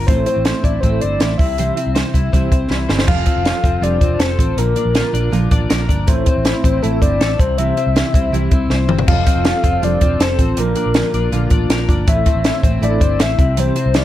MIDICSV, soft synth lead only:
0, 0, Header, 1, 2, 480
1, 0, Start_track
1, 0, Key_signature, -1, "major"
1, 0, Tempo, 375000
1, 99, Time_signature, 4, 2, 24, 8
1, 17978, End_track
2, 0, Start_track
2, 0, Title_t, "Soft synth lead"
2, 0, Program_c, 0, 80
2, 86, Note_on_c, 0, 72, 90
2, 315, Note_off_c, 0, 72, 0
2, 335, Note_on_c, 0, 72, 93
2, 818, Note_on_c, 0, 74, 87
2, 838, Note_off_c, 0, 72, 0
2, 1029, Note_on_c, 0, 72, 82
2, 1048, Note_off_c, 0, 74, 0
2, 1284, Note_off_c, 0, 72, 0
2, 1294, Note_on_c, 0, 74, 109
2, 1744, Note_off_c, 0, 74, 0
2, 1762, Note_on_c, 0, 76, 102
2, 2441, Note_off_c, 0, 76, 0
2, 3940, Note_on_c, 0, 77, 106
2, 4905, Note_on_c, 0, 74, 90
2, 4924, Note_off_c, 0, 77, 0
2, 5286, Note_off_c, 0, 74, 0
2, 5294, Note_on_c, 0, 74, 68
2, 5374, Note_on_c, 0, 72, 81
2, 5394, Note_off_c, 0, 74, 0
2, 5868, Note_on_c, 0, 70, 81
2, 5887, Note_off_c, 0, 72, 0
2, 6826, Note_off_c, 0, 70, 0
2, 7779, Note_on_c, 0, 72, 82
2, 8737, Note_on_c, 0, 69, 87
2, 8756, Note_off_c, 0, 72, 0
2, 8982, Note_on_c, 0, 74, 102
2, 9001, Note_off_c, 0, 69, 0
2, 9467, Note_on_c, 0, 72, 92
2, 9486, Note_off_c, 0, 74, 0
2, 9701, Note_on_c, 0, 76, 105
2, 9720, Note_off_c, 0, 72, 0
2, 10662, Note_off_c, 0, 76, 0
2, 11620, Note_on_c, 0, 77, 104
2, 12596, Note_on_c, 0, 74, 92
2, 12615, Note_off_c, 0, 77, 0
2, 13078, Note_on_c, 0, 72, 93
2, 13097, Note_off_c, 0, 74, 0
2, 13550, Note_off_c, 0, 72, 0
2, 13565, Note_on_c, 0, 70, 86
2, 14461, Note_off_c, 0, 70, 0
2, 15469, Note_on_c, 0, 76, 100
2, 16134, Note_off_c, 0, 76, 0
2, 16432, Note_on_c, 0, 74, 95
2, 16918, Note_on_c, 0, 76, 106
2, 16937, Note_off_c, 0, 74, 0
2, 17403, Note_on_c, 0, 72, 90
2, 17422, Note_off_c, 0, 76, 0
2, 17870, Note_off_c, 0, 72, 0
2, 17878, Note_on_c, 0, 74, 90
2, 17978, Note_off_c, 0, 74, 0
2, 17978, End_track
0, 0, End_of_file